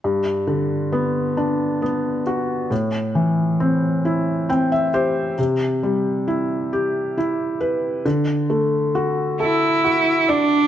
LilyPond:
<<
  \new Staff \with { instrumentName = "Felt piano" } { \time 6/8 \key g \major \tempo 4. = 45 << { r2. | r2 g''16 e''16 c''8 | r2. | r2. | } \\ { g,8 d8 b8 d'8 b8 fis'8 | a,8 e8 c'8 e'8 c'8 g'8 | c8 g8 e'8 g'8 e'8 b'8 | d8 a8 fis'8 a'8 fis'8 d''8 | } >> }
  \new Staff \with { instrumentName = "Cello" } { \time 6/8 \key g \major r2. | r2. | r2. | r4. e'4 d'8 | }
>>